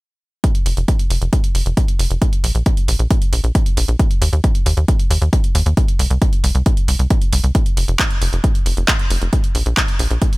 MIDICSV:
0, 0, Header, 1, 3, 480
1, 0, Start_track
1, 0, Tempo, 444444
1, 474, Time_signature, 4, 2, 24, 8
1, 11206, End_track
2, 0, Start_track
2, 0, Title_t, "Analog synth bass"
2, 0, Program_c, 0, 38
2, 713, Note_on_c, 0, 29, 93
2, 798, Note_off_c, 0, 29, 0
2, 834, Note_on_c, 0, 29, 81
2, 919, Note_off_c, 0, 29, 0
2, 1193, Note_on_c, 0, 29, 90
2, 1278, Note_off_c, 0, 29, 0
2, 1313, Note_on_c, 0, 29, 80
2, 1398, Note_off_c, 0, 29, 0
2, 1673, Note_on_c, 0, 29, 93
2, 1758, Note_off_c, 0, 29, 0
2, 1793, Note_on_c, 0, 29, 79
2, 1878, Note_off_c, 0, 29, 0
2, 2153, Note_on_c, 0, 29, 94
2, 2238, Note_off_c, 0, 29, 0
2, 2274, Note_on_c, 0, 29, 78
2, 2358, Note_off_c, 0, 29, 0
2, 2633, Note_on_c, 0, 34, 97
2, 2718, Note_off_c, 0, 34, 0
2, 2753, Note_on_c, 0, 34, 80
2, 2838, Note_off_c, 0, 34, 0
2, 3113, Note_on_c, 0, 34, 90
2, 3198, Note_off_c, 0, 34, 0
2, 3233, Note_on_c, 0, 34, 76
2, 3318, Note_off_c, 0, 34, 0
2, 3593, Note_on_c, 0, 34, 92
2, 3678, Note_off_c, 0, 34, 0
2, 3713, Note_on_c, 0, 34, 77
2, 3798, Note_off_c, 0, 34, 0
2, 4074, Note_on_c, 0, 34, 93
2, 4158, Note_off_c, 0, 34, 0
2, 4194, Note_on_c, 0, 34, 76
2, 4279, Note_off_c, 0, 34, 0
2, 4554, Note_on_c, 0, 39, 92
2, 4638, Note_off_c, 0, 39, 0
2, 4674, Note_on_c, 0, 39, 82
2, 4758, Note_off_c, 0, 39, 0
2, 5033, Note_on_c, 0, 39, 91
2, 5118, Note_off_c, 0, 39, 0
2, 5153, Note_on_c, 0, 39, 76
2, 5238, Note_off_c, 0, 39, 0
2, 5514, Note_on_c, 0, 39, 93
2, 5598, Note_off_c, 0, 39, 0
2, 5634, Note_on_c, 0, 39, 78
2, 5718, Note_off_c, 0, 39, 0
2, 5993, Note_on_c, 0, 39, 96
2, 6078, Note_off_c, 0, 39, 0
2, 6114, Note_on_c, 0, 39, 74
2, 6198, Note_off_c, 0, 39, 0
2, 6473, Note_on_c, 0, 36, 96
2, 6558, Note_off_c, 0, 36, 0
2, 6593, Note_on_c, 0, 36, 85
2, 6678, Note_off_c, 0, 36, 0
2, 6953, Note_on_c, 0, 36, 90
2, 7038, Note_off_c, 0, 36, 0
2, 7072, Note_on_c, 0, 36, 80
2, 7158, Note_off_c, 0, 36, 0
2, 7433, Note_on_c, 0, 36, 93
2, 7518, Note_off_c, 0, 36, 0
2, 7553, Note_on_c, 0, 36, 77
2, 7638, Note_off_c, 0, 36, 0
2, 7912, Note_on_c, 0, 36, 91
2, 7998, Note_off_c, 0, 36, 0
2, 8032, Note_on_c, 0, 36, 73
2, 8118, Note_off_c, 0, 36, 0
2, 8393, Note_on_c, 0, 29, 94
2, 8478, Note_off_c, 0, 29, 0
2, 8513, Note_on_c, 0, 29, 82
2, 8598, Note_off_c, 0, 29, 0
2, 8873, Note_on_c, 0, 29, 89
2, 8958, Note_off_c, 0, 29, 0
2, 8994, Note_on_c, 0, 29, 80
2, 9078, Note_off_c, 0, 29, 0
2, 9353, Note_on_c, 0, 29, 92
2, 9438, Note_off_c, 0, 29, 0
2, 9473, Note_on_c, 0, 29, 79
2, 9558, Note_off_c, 0, 29, 0
2, 9833, Note_on_c, 0, 29, 96
2, 9918, Note_off_c, 0, 29, 0
2, 9954, Note_on_c, 0, 29, 74
2, 10039, Note_off_c, 0, 29, 0
2, 10314, Note_on_c, 0, 34, 91
2, 10399, Note_off_c, 0, 34, 0
2, 10434, Note_on_c, 0, 34, 82
2, 10518, Note_off_c, 0, 34, 0
2, 10795, Note_on_c, 0, 34, 87
2, 10879, Note_off_c, 0, 34, 0
2, 10915, Note_on_c, 0, 34, 77
2, 10999, Note_off_c, 0, 34, 0
2, 11206, End_track
3, 0, Start_track
3, 0, Title_t, "Drums"
3, 473, Note_on_c, 9, 36, 119
3, 473, Note_on_c, 9, 42, 77
3, 581, Note_off_c, 9, 36, 0
3, 581, Note_off_c, 9, 42, 0
3, 593, Note_on_c, 9, 42, 51
3, 701, Note_off_c, 9, 42, 0
3, 712, Note_on_c, 9, 46, 104
3, 820, Note_off_c, 9, 46, 0
3, 833, Note_on_c, 9, 42, 52
3, 941, Note_off_c, 9, 42, 0
3, 953, Note_on_c, 9, 36, 114
3, 953, Note_on_c, 9, 42, 77
3, 1061, Note_off_c, 9, 36, 0
3, 1061, Note_off_c, 9, 42, 0
3, 1074, Note_on_c, 9, 42, 52
3, 1182, Note_off_c, 9, 42, 0
3, 1193, Note_on_c, 9, 46, 95
3, 1301, Note_off_c, 9, 46, 0
3, 1314, Note_on_c, 9, 42, 50
3, 1422, Note_off_c, 9, 42, 0
3, 1433, Note_on_c, 9, 36, 117
3, 1434, Note_on_c, 9, 42, 80
3, 1541, Note_off_c, 9, 36, 0
3, 1542, Note_off_c, 9, 42, 0
3, 1553, Note_on_c, 9, 42, 53
3, 1661, Note_off_c, 9, 42, 0
3, 1673, Note_on_c, 9, 46, 100
3, 1781, Note_off_c, 9, 46, 0
3, 1794, Note_on_c, 9, 42, 52
3, 1902, Note_off_c, 9, 42, 0
3, 1913, Note_on_c, 9, 36, 117
3, 1914, Note_on_c, 9, 42, 79
3, 2021, Note_off_c, 9, 36, 0
3, 2022, Note_off_c, 9, 42, 0
3, 2034, Note_on_c, 9, 42, 51
3, 2142, Note_off_c, 9, 42, 0
3, 2154, Note_on_c, 9, 46, 100
3, 2262, Note_off_c, 9, 46, 0
3, 2274, Note_on_c, 9, 42, 53
3, 2382, Note_off_c, 9, 42, 0
3, 2394, Note_on_c, 9, 36, 117
3, 2394, Note_on_c, 9, 42, 76
3, 2502, Note_off_c, 9, 36, 0
3, 2502, Note_off_c, 9, 42, 0
3, 2514, Note_on_c, 9, 42, 52
3, 2622, Note_off_c, 9, 42, 0
3, 2634, Note_on_c, 9, 46, 106
3, 2742, Note_off_c, 9, 46, 0
3, 2754, Note_on_c, 9, 42, 52
3, 2862, Note_off_c, 9, 42, 0
3, 2873, Note_on_c, 9, 42, 75
3, 2874, Note_on_c, 9, 36, 122
3, 2981, Note_off_c, 9, 42, 0
3, 2982, Note_off_c, 9, 36, 0
3, 2994, Note_on_c, 9, 42, 52
3, 3102, Note_off_c, 9, 42, 0
3, 3114, Note_on_c, 9, 46, 108
3, 3222, Note_off_c, 9, 46, 0
3, 3234, Note_on_c, 9, 42, 48
3, 3342, Note_off_c, 9, 42, 0
3, 3354, Note_on_c, 9, 36, 123
3, 3354, Note_on_c, 9, 42, 82
3, 3462, Note_off_c, 9, 36, 0
3, 3462, Note_off_c, 9, 42, 0
3, 3474, Note_on_c, 9, 42, 52
3, 3582, Note_off_c, 9, 42, 0
3, 3593, Note_on_c, 9, 46, 105
3, 3701, Note_off_c, 9, 46, 0
3, 3714, Note_on_c, 9, 42, 50
3, 3822, Note_off_c, 9, 42, 0
3, 3834, Note_on_c, 9, 36, 124
3, 3834, Note_on_c, 9, 42, 81
3, 3942, Note_off_c, 9, 36, 0
3, 3942, Note_off_c, 9, 42, 0
3, 3954, Note_on_c, 9, 42, 51
3, 4062, Note_off_c, 9, 42, 0
3, 4074, Note_on_c, 9, 46, 105
3, 4182, Note_off_c, 9, 46, 0
3, 4195, Note_on_c, 9, 42, 53
3, 4303, Note_off_c, 9, 42, 0
3, 4314, Note_on_c, 9, 36, 127
3, 4315, Note_on_c, 9, 42, 76
3, 4422, Note_off_c, 9, 36, 0
3, 4423, Note_off_c, 9, 42, 0
3, 4435, Note_on_c, 9, 42, 50
3, 4543, Note_off_c, 9, 42, 0
3, 4554, Note_on_c, 9, 46, 113
3, 4662, Note_off_c, 9, 46, 0
3, 4675, Note_on_c, 9, 42, 51
3, 4783, Note_off_c, 9, 42, 0
3, 4794, Note_on_c, 9, 36, 123
3, 4794, Note_on_c, 9, 42, 73
3, 4902, Note_off_c, 9, 36, 0
3, 4902, Note_off_c, 9, 42, 0
3, 4914, Note_on_c, 9, 42, 51
3, 5022, Note_off_c, 9, 42, 0
3, 5034, Note_on_c, 9, 46, 102
3, 5142, Note_off_c, 9, 46, 0
3, 5154, Note_on_c, 9, 42, 48
3, 5262, Note_off_c, 9, 42, 0
3, 5274, Note_on_c, 9, 36, 127
3, 5274, Note_on_c, 9, 42, 80
3, 5382, Note_off_c, 9, 36, 0
3, 5382, Note_off_c, 9, 42, 0
3, 5394, Note_on_c, 9, 42, 50
3, 5502, Note_off_c, 9, 42, 0
3, 5514, Note_on_c, 9, 46, 105
3, 5622, Note_off_c, 9, 46, 0
3, 5635, Note_on_c, 9, 42, 49
3, 5743, Note_off_c, 9, 42, 0
3, 5754, Note_on_c, 9, 36, 121
3, 5755, Note_on_c, 9, 42, 75
3, 5862, Note_off_c, 9, 36, 0
3, 5863, Note_off_c, 9, 42, 0
3, 5875, Note_on_c, 9, 42, 51
3, 5983, Note_off_c, 9, 42, 0
3, 5994, Note_on_c, 9, 46, 110
3, 6102, Note_off_c, 9, 46, 0
3, 6115, Note_on_c, 9, 42, 49
3, 6223, Note_off_c, 9, 42, 0
3, 6234, Note_on_c, 9, 36, 123
3, 6234, Note_on_c, 9, 42, 70
3, 6342, Note_off_c, 9, 36, 0
3, 6342, Note_off_c, 9, 42, 0
3, 6355, Note_on_c, 9, 42, 48
3, 6463, Note_off_c, 9, 42, 0
3, 6474, Note_on_c, 9, 46, 104
3, 6582, Note_off_c, 9, 46, 0
3, 6594, Note_on_c, 9, 42, 49
3, 6702, Note_off_c, 9, 42, 0
3, 6713, Note_on_c, 9, 42, 70
3, 6714, Note_on_c, 9, 36, 123
3, 6821, Note_off_c, 9, 42, 0
3, 6822, Note_off_c, 9, 36, 0
3, 6833, Note_on_c, 9, 42, 50
3, 6941, Note_off_c, 9, 42, 0
3, 6953, Note_on_c, 9, 46, 104
3, 7061, Note_off_c, 9, 46, 0
3, 7073, Note_on_c, 9, 42, 47
3, 7181, Note_off_c, 9, 42, 0
3, 7193, Note_on_c, 9, 42, 76
3, 7194, Note_on_c, 9, 36, 122
3, 7301, Note_off_c, 9, 42, 0
3, 7302, Note_off_c, 9, 36, 0
3, 7313, Note_on_c, 9, 42, 48
3, 7421, Note_off_c, 9, 42, 0
3, 7433, Note_on_c, 9, 46, 110
3, 7541, Note_off_c, 9, 46, 0
3, 7553, Note_on_c, 9, 42, 51
3, 7661, Note_off_c, 9, 42, 0
3, 7672, Note_on_c, 9, 42, 73
3, 7674, Note_on_c, 9, 36, 122
3, 7780, Note_off_c, 9, 42, 0
3, 7782, Note_off_c, 9, 36, 0
3, 7793, Note_on_c, 9, 42, 47
3, 7901, Note_off_c, 9, 42, 0
3, 7912, Note_on_c, 9, 46, 112
3, 8020, Note_off_c, 9, 46, 0
3, 8033, Note_on_c, 9, 42, 51
3, 8141, Note_off_c, 9, 42, 0
3, 8153, Note_on_c, 9, 42, 76
3, 8154, Note_on_c, 9, 36, 117
3, 8261, Note_off_c, 9, 42, 0
3, 8262, Note_off_c, 9, 36, 0
3, 8273, Note_on_c, 9, 42, 49
3, 8381, Note_off_c, 9, 42, 0
3, 8394, Note_on_c, 9, 46, 104
3, 8502, Note_off_c, 9, 46, 0
3, 8513, Note_on_c, 9, 42, 51
3, 8621, Note_off_c, 9, 42, 0
3, 8633, Note_on_c, 9, 39, 109
3, 8633, Note_on_c, 9, 42, 71
3, 8634, Note_on_c, 9, 36, 120
3, 8741, Note_off_c, 9, 39, 0
3, 8741, Note_off_c, 9, 42, 0
3, 8742, Note_off_c, 9, 36, 0
3, 8753, Note_on_c, 9, 42, 48
3, 8861, Note_off_c, 9, 42, 0
3, 8873, Note_on_c, 9, 46, 100
3, 8981, Note_off_c, 9, 46, 0
3, 8995, Note_on_c, 9, 42, 49
3, 9103, Note_off_c, 9, 42, 0
3, 9114, Note_on_c, 9, 36, 119
3, 9115, Note_on_c, 9, 42, 75
3, 9222, Note_off_c, 9, 36, 0
3, 9223, Note_off_c, 9, 42, 0
3, 9234, Note_on_c, 9, 42, 49
3, 9342, Note_off_c, 9, 42, 0
3, 9353, Note_on_c, 9, 46, 107
3, 9461, Note_off_c, 9, 46, 0
3, 9474, Note_on_c, 9, 42, 51
3, 9582, Note_off_c, 9, 42, 0
3, 9594, Note_on_c, 9, 36, 118
3, 9594, Note_on_c, 9, 39, 114
3, 9594, Note_on_c, 9, 42, 75
3, 9702, Note_off_c, 9, 36, 0
3, 9702, Note_off_c, 9, 39, 0
3, 9702, Note_off_c, 9, 42, 0
3, 9713, Note_on_c, 9, 42, 47
3, 9821, Note_off_c, 9, 42, 0
3, 9833, Note_on_c, 9, 46, 107
3, 9941, Note_off_c, 9, 46, 0
3, 9953, Note_on_c, 9, 42, 49
3, 10061, Note_off_c, 9, 42, 0
3, 10073, Note_on_c, 9, 42, 78
3, 10074, Note_on_c, 9, 36, 115
3, 10181, Note_off_c, 9, 42, 0
3, 10182, Note_off_c, 9, 36, 0
3, 10193, Note_on_c, 9, 42, 51
3, 10301, Note_off_c, 9, 42, 0
3, 10313, Note_on_c, 9, 46, 100
3, 10421, Note_off_c, 9, 46, 0
3, 10433, Note_on_c, 9, 42, 52
3, 10541, Note_off_c, 9, 42, 0
3, 10553, Note_on_c, 9, 39, 107
3, 10553, Note_on_c, 9, 42, 75
3, 10554, Note_on_c, 9, 36, 113
3, 10661, Note_off_c, 9, 39, 0
3, 10661, Note_off_c, 9, 42, 0
3, 10662, Note_off_c, 9, 36, 0
3, 10673, Note_on_c, 9, 42, 50
3, 10781, Note_off_c, 9, 42, 0
3, 10794, Note_on_c, 9, 46, 97
3, 10902, Note_off_c, 9, 46, 0
3, 10914, Note_on_c, 9, 42, 48
3, 11022, Note_off_c, 9, 42, 0
3, 11033, Note_on_c, 9, 42, 77
3, 11034, Note_on_c, 9, 36, 115
3, 11141, Note_off_c, 9, 42, 0
3, 11142, Note_off_c, 9, 36, 0
3, 11153, Note_on_c, 9, 42, 48
3, 11206, Note_off_c, 9, 42, 0
3, 11206, End_track
0, 0, End_of_file